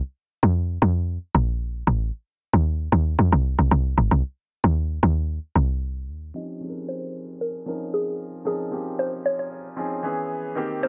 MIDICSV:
0, 0, Header, 1, 4, 480
1, 0, Start_track
1, 0, Tempo, 526316
1, 26, Time_signature, 4, 2, 24, 8
1, 9923, End_track
2, 0, Start_track
2, 0, Title_t, "Synth pluck"
2, 0, Program_c, 0, 84
2, 5798, Note_on_c, 0, 75, 111
2, 6278, Note_on_c, 0, 72, 101
2, 6286, Note_off_c, 0, 75, 0
2, 6759, Note_on_c, 0, 70, 96
2, 6766, Note_off_c, 0, 72, 0
2, 7239, Note_on_c, 0, 68, 90
2, 7246, Note_off_c, 0, 70, 0
2, 7709, Note_off_c, 0, 68, 0
2, 7720, Note_on_c, 0, 68, 96
2, 8200, Note_on_c, 0, 72, 96
2, 8207, Note_off_c, 0, 68, 0
2, 8304, Note_off_c, 0, 72, 0
2, 8441, Note_on_c, 0, 73, 86
2, 8550, Note_off_c, 0, 73, 0
2, 8565, Note_on_c, 0, 73, 78
2, 9357, Note_off_c, 0, 73, 0
2, 9879, Note_on_c, 0, 72, 82
2, 9923, Note_off_c, 0, 72, 0
2, 9923, End_track
3, 0, Start_track
3, 0, Title_t, "Grand piano"
3, 0, Program_c, 1, 0
3, 5783, Note_on_c, 1, 53, 73
3, 5788, Note_on_c, 1, 60, 64
3, 5794, Note_on_c, 1, 61, 63
3, 5799, Note_on_c, 1, 63, 65
3, 5804, Note_on_c, 1, 67, 75
3, 5949, Control_c, 1, 64, 127
3, 5979, Note_off_c, 1, 53, 0
3, 5981, Note_off_c, 1, 60, 0
3, 5984, Note_off_c, 1, 61, 0
3, 5986, Note_off_c, 1, 63, 0
3, 5989, Note_off_c, 1, 67, 0
3, 6023, Note_on_c, 1, 53, 68
3, 6029, Note_on_c, 1, 60, 63
3, 6034, Note_on_c, 1, 61, 64
3, 6039, Note_on_c, 1, 63, 61
3, 6043, Note_on_c, 1, 68, 60
3, 6094, Note_off_c, 1, 68, 0
3, 6101, Note_on_c, 1, 70, 74
3, 6794, Note_off_c, 1, 53, 0
3, 6797, Note_off_c, 1, 60, 0
3, 6800, Note_off_c, 1, 61, 0
3, 6802, Note_off_c, 1, 63, 0
3, 6833, Note_off_c, 1, 70, 0
3, 6984, Note_on_c, 1, 53, 74
3, 6989, Note_on_c, 1, 60, 66
3, 6994, Note_on_c, 1, 61, 64
3, 7000, Note_on_c, 1, 63, 67
3, 7005, Note_on_c, 1, 70, 80
3, 7565, Note_off_c, 1, 53, 0
3, 7567, Note_off_c, 1, 60, 0
3, 7570, Note_off_c, 1, 61, 0
3, 7573, Note_off_c, 1, 63, 0
3, 7575, Note_off_c, 1, 70, 0
3, 7705, Note_on_c, 1, 53, 72
3, 7710, Note_on_c, 1, 60, 65
3, 7715, Note_on_c, 1, 61, 66
3, 7720, Note_on_c, 1, 63, 66
3, 7726, Note_on_c, 1, 70, 79
3, 7899, Note_off_c, 1, 53, 0
3, 7902, Note_off_c, 1, 60, 0
3, 7904, Note_off_c, 1, 61, 0
3, 7907, Note_off_c, 1, 63, 0
3, 7910, Note_off_c, 1, 70, 0
3, 7944, Note_on_c, 1, 53, 68
3, 7950, Note_on_c, 1, 60, 63
3, 7954, Note_on_c, 1, 61, 61
3, 7960, Note_on_c, 1, 63, 66
3, 7965, Note_on_c, 1, 67, 78
3, 8715, Note_off_c, 1, 53, 0
3, 8718, Note_off_c, 1, 60, 0
3, 8720, Note_off_c, 1, 61, 0
3, 8723, Note_off_c, 1, 63, 0
3, 8725, Note_off_c, 1, 67, 0
3, 8904, Note_on_c, 1, 53, 70
3, 8909, Note_on_c, 1, 60, 67
3, 8913, Note_on_c, 1, 61, 67
3, 8919, Note_on_c, 1, 63, 67
3, 8924, Note_on_c, 1, 68, 83
3, 9145, Note_off_c, 1, 53, 0
3, 9145, Note_off_c, 1, 61, 0
3, 9145, Note_on_c, 1, 52, 91
3, 9147, Note_off_c, 1, 60, 0
3, 9151, Note_off_c, 1, 68, 0
3, 9151, Note_on_c, 1, 59, 78
3, 9153, Note_off_c, 1, 63, 0
3, 9157, Control_c, 1, 64, 0
3, 9158, Note_on_c, 1, 61, 84
3, 9165, Note_on_c, 1, 68, 98
3, 9316, Control_c, 1, 64, 127
3, 9533, Note_off_c, 1, 52, 0
3, 9536, Note_off_c, 1, 59, 0
3, 9540, Note_off_c, 1, 61, 0
3, 9543, Note_off_c, 1, 68, 0
3, 9625, Note_on_c, 1, 51, 86
3, 9631, Note_on_c, 1, 58, 81
3, 9636, Control_c, 1, 64, 0
3, 9638, Note_on_c, 1, 60, 79
3, 9645, Note_on_c, 1, 67, 96
3, 9793, Control_c, 1, 64, 127
3, 9819, Note_off_c, 1, 51, 0
3, 9822, Note_off_c, 1, 58, 0
3, 9826, Note_off_c, 1, 60, 0
3, 9829, Note_off_c, 1, 67, 0
3, 9862, Note_on_c, 1, 51, 68
3, 9869, Note_on_c, 1, 58, 65
3, 9876, Note_on_c, 1, 60, 64
3, 9882, Note_on_c, 1, 70, 77
3, 9923, Note_off_c, 1, 51, 0
3, 9923, Note_off_c, 1, 58, 0
3, 9923, Note_off_c, 1, 60, 0
3, 9923, Note_off_c, 1, 70, 0
3, 9923, End_track
4, 0, Start_track
4, 0, Title_t, "Log drum bass"
4, 0, Program_c, 2, 39
4, 391, Note_on_c, 2, 41, 99
4, 712, Note_off_c, 2, 41, 0
4, 747, Note_on_c, 2, 41, 106
4, 1076, Note_off_c, 2, 41, 0
4, 1227, Note_on_c, 2, 34, 100
4, 1670, Note_off_c, 2, 34, 0
4, 1707, Note_on_c, 2, 33, 111
4, 1923, Note_off_c, 2, 33, 0
4, 2311, Note_on_c, 2, 39, 99
4, 2632, Note_off_c, 2, 39, 0
4, 2665, Note_on_c, 2, 39, 104
4, 2882, Note_off_c, 2, 39, 0
4, 2906, Note_on_c, 2, 41, 97
4, 3019, Note_off_c, 2, 41, 0
4, 3031, Note_on_c, 2, 36, 101
4, 3248, Note_off_c, 2, 36, 0
4, 3270, Note_on_c, 2, 36, 91
4, 3375, Note_off_c, 2, 36, 0
4, 3386, Note_on_c, 2, 36, 100
4, 3603, Note_off_c, 2, 36, 0
4, 3626, Note_on_c, 2, 32, 98
4, 3739, Note_off_c, 2, 32, 0
4, 3751, Note_on_c, 2, 36, 96
4, 3855, Note_off_c, 2, 36, 0
4, 4230, Note_on_c, 2, 39, 103
4, 4552, Note_off_c, 2, 39, 0
4, 4586, Note_on_c, 2, 39, 104
4, 4916, Note_off_c, 2, 39, 0
4, 5066, Note_on_c, 2, 36, 89
4, 5546, Note_on_c, 2, 39, 93
4, 5559, Note_off_c, 2, 36, 0
4, 5763, Note_off_c, 2, 39, 0
4, 9923, End_track
0, 0, End_of_file